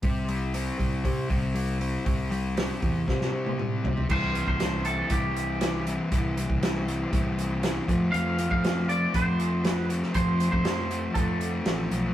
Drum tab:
CC |----------------|----------------|x---------------|----------------|
HH |o-o-o-o-o-o-o-o-|o-o-o-o---------|--x-x-x-x-x-x-x-|x-x-x-x-x-x-x-x-|
SD |----------------|----o---oo------|----o-------o---|----o-------o---|
T1 |----------------|-----------o----|----------------|----------------|
T2 |----------------|------------o---|----------------|----------------|
FT |----------------|--------------oo|----------------|----------------|
BD |o-----o-o-o-----|o-----o-o-------|o--o----o-------|o--o----o-----o-|

CC |----------------|----------------|
HH |x-x-x-x-x-x-x-x-|x-x-x-x-x-x-x-x-|
SD |----o-------o--o|----o-------o---|
T1 |----------------|----------------|
T2 |----------------|----------------|
FT |----------------|----------------|
BD |---o----o-------|o--o----o-------|